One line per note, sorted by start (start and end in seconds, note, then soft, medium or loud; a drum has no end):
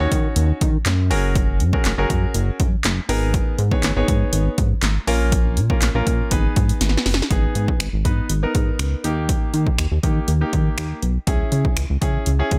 0.00 0.69 C#4 medium
0.00 0.69 D#4 medium
0.00 0.69 F#4 medium
0.00 0.69 C#5 loud
0.12 0.28 D#3 loud
0.12 kick medium
0.12 closed hi-hat medium
0.36 0.52 D#2 loud
0.36 closed hi-hat loud
0.61 0.77 D#3 loud
0.61 kick loud
0.61 closed hi-hat medium
0.86 1.12 F#2 loud
0.86 snare medium
0.86 clap loud
0.86 closed hi-hat loud
1.10 1.62 F#1 loud
1.10 1.60 C#4 medium
1.10 1.60 F#4 medium
1.10 1.60 G#4 medium
1.10 1.60 A#4 loud
1.10 open hi-hat medium
1.35 kick loud
1.35 closed hi-hat medium
1.60 1.76 F#2 loud
1.60 closed hi-hat medium
1.73 1.90 C#4 medium
1.73 1.90 F#4 medium
1.73 1.90 G#4 medium
1.73 1.90 A#4 medium
1.73 kick medium
1.85 1.94 F#1 loud
1.85 snare medium
1.85 clap loud
1.85 closed hi-hat loud
1.98 2.06 F#1 loud
1.98 2.67 C#4 medium
1.98 2.67 F#4 medium
1.98 2.67 G#4 medium
1.98 2.67 A#4 loud
2.10 2.26 F#2 loud
2.10 kick medium
2.10 closed hi-hat medium
2.34 2.51 F#1 loud
2.34 closed hi-hat loud
2.60 2.76 F#2 loud
2.60 kick loud
2.60 closed hi-hat medium
2.84 3.00 F#1 loud
2.84 snare medium
2.84 clap loud
2.84 closed hi-hat medium
3.09 3.41 G#1 loud
3.09 3.59 B3 medium
3.09 3.59 D#4 medium
3.09 3.59 G#4 medium
3.09 3.59 A#4 loud
3.09 open hi-hat medium
3.34 kick loud
3.34 closed hi-hat medium
3.59 3.75 G#2 loud
3.59 closed hi-hat medium
3.71 3.89 B3 medium
3.71 3.89 D#4 medium
3.71 3.89 G#4 medium
3.71 3.89 C#5 loud
3.71 kick medium
3.83 3.92 G#1 loud
3.83 snare medium
3.83 clap loud
3.83 closed hi-hat loud
3.96 4.04 G#1 loud
3.96 4.66 B3 medium
3.96 4.66 D#4 medium
3.96 4.66 G#4 medium
3.96 4.66 C#5 loud
4.08 4.24 G#2 medium
4.08 kick medium
4.08 closed hi-hat medium
4.33 4.49 G#1 loud
4.33 closed hi-hat loud
4.58 4.74 G#2 loud
4.58 kick loud
4.58 closed hi-hat medium
4.83 4.99 G#1 medium
4.83 snare medium
4.83 clap loud
4.83 closed hi-hat medium
5.07 5.58 A#1 medium
5.07 5.57 A#3 medium
5.07 5.57 C#4 medium
5.07 5.57 F4 medium
5.07 5.57 A#4 loud
5.07 open hi-hat medium
5.32 kick loud
5.32 closed hi-hat loud
5.57 5.73 A#2 loud
5.57 closed hi-hat medium
5.70 5.87 A#3 medium
5.70 5.87 C#4 medium
5.70 5.87 F4 medium
5.70 5.87 A#4 loud
5.70 kick medium
5.82 5.90 A#1 loud
5.82 snare medium
5.82 clap loud
5.82 closed hi-hat loud
5.95 6.02 A#1 medium
5.95 6.31 A#3 medium
5.95 6.31 C#4 medium
5.95 6.31 F4 medium
5.95 6.32 A#4 loud
6.07 6.23 A#2 loud
6.07 kick medium
6.07 closed hi-hat medium
6.31 6.48 G#1 loud
6.31 7.11 B3 medium
6.31 7.11 D#4 medium
6.31 7.11 G#4 medium
6.31 7.11 B4 loud
6.31 kick medium
6.31 closed hi-hat loud
6.56 6.72 G#2 loud
6.56 kick loud
6.56 closed hi-hat medium
6.69 closed hi-hat medium
6.81 6.97 G#1 medium
6.81 snare medium
6.81 closed hi-hat medium
6.89 snare medium
6.97 snare medium
7.06 7.22 F#1 loud
7.06 snare medium
7.06 open hi-hat medium
7.14 snare loud
7.22 snare loud
7.30 7.47 G#1 loud
7.30 7.83 B3 medium
7.30 7.83 D#4 medium
7.30 7.83 G#4 medium
7.30 kick loud
7.30 closed hi-hat medium
7.55 7.71 G#2 loud
7.55 closed hi-hat medium
7.68 kick medium
7.80 7.89 G#1 loud
7.80 finger snap loud
7.80 closed hi-hat medium
7.93 8.07 G#1 medium
8.05 8.21 G#2 loud
8.05 8.31 B3 medium
8.05 8.31 D#4 medium
8.05 8.31 B4 medium
8.05 kick medium
8.05 closed hi-hat medium
8.30 8.46 G#1 loud
8.30 closed hi-hat medium
8.43 9.03 B3 medium
8.43 9.03 D#4 medium
8.43 9.03 A#4 medium
8.55 8.71 G#2 loud
8.55 kick loud
8.55 closed hi-hat medium
8.79 8.95 C#2 medium
8.79 finger snap loud
8.79 closed hi-hat medium
9.04 9.36 D#2 loud
9.04 9.84 A#3 medium
9.04 9.84 D#4 medium
9.04 9.84 G4 medium
9.04 closed hi-hat medium
9.29 kick loud
9.29 closed hi-hat medium
9.54 9.70 D#3 loud
9.54 closed hi-hat medium
9.67 kick medium
9.78 9.87 D#2 loud
9.78 finger snap loud
9.78 closed hi-hat medium
9.92 9.99 D#2 loud
10.03 10.20 D#3 loud
10.03 10.29 A#3 medium
10.03 10.29 D#4 medium
10.03 10.30 G4 medium
10.03 kick medium
10.03 closed hi-hat medium
10.28 10.44 D#2 loud
10.28 closed hi-hat medium
10.41 11.01 A#3 medium
10.41 11.01 D#4 medium
10.41 11.01 G4 medium
10.53 10.69 D#3 loud
10.53 kick medium
10.53 closed hi-hat medium
10.78 10.94 D#2 loud
10.78 finger snap loud
10.78 closed hi-hat medium
11.02 11.19 B1 loud
11.02 closed hi-hat medium
11.27 11.43 C#2 loud
11.27 11.79 C#4 medium
11.27 11.79 E4 medium
11.27 11.80 G#4 medium
11.27 kick loud
11.27 closed hi-hat medium
11.52 11.68 C#3 loud
11.52 closed hi-hat medium
11.65 kick medium
11.77 11.85 C#2 loud
11.77 finger snap loud
11.77 closed hi-hat medium
11.90 11.98 C#2 loud
12.01 12.18 C#3 loud
12.01 12.28 C#4 medium
12.01 12.28 E4 medium
12.01 12.28 G#4 medium
12.01 kick medium
12.01 closed hi-hat medium
12.26 12.43 C#2 loud
12.26 closed hi-hat medium
12.39 12.59 C#4 medium
12.39 12.59 E4 medium
12.39 12.59 G#4 loud
12.51 12.59 C#3 loud
12.51 kick loud
12.51 closed hi-hat medium